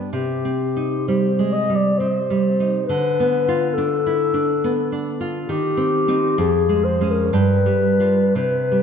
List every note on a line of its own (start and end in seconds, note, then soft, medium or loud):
0.12 2.85 C3 soft
0.12 1.04 G4 soft
0.45 0.95 C4 soft
0.76 1.26 D#4 soft
1.08 1.57 G3 soft
1.08 1.55 C5 medium
1.39 1.69 G#3 soft
1.53 1.77 D#5 soft
1.70 2.18 G3 soft
1.76 2.00 D5 soft
1.98 2.47 C4 soft
1.98 2.86 C5 medium
2.30 2.77 G3 soft
2.60 2.89 D#4 soft
2.86 5.45 D3 soft
2.86 3.75 B4 medium
3.20 3.65 B3 soft
3.48 3.94 F4 soft
3.74 4.23 D4 soft
3.74 5.04 A4 medium
4.06 4.34 E4 soft
4.34 4.80 D4 soft
4.64 5.09 B3 soft
4.92 5.38 D4 soft
5.21 5.49 F4 soft
5.49 6.36 D#3 medium
5.49 6.40 G4 medium
5.77 6.07 C4 soft
6.08 6.36 C4 soft
6.08 6.36 D#4 soft
6.38 7.30 F2 medium
6.38 6.86 G#4 medium
6.69 7.00 G#3 soft
6.84 7.12 C5 medium
7.01 7.30 G#3 soft
7.01 7.30 C#4 soft
7.11 7.35 A#4 soft
7.33 8.32 G2 soft
7.33 8.35 B4 medium
7.66 7.99 G3 soft
8.00 8.31 G3 soft
8.00 8.32 F4 soft
8.35 8.83 C3 soft
8.35 8.83 B4 medium
8.72 8.83 G3 soft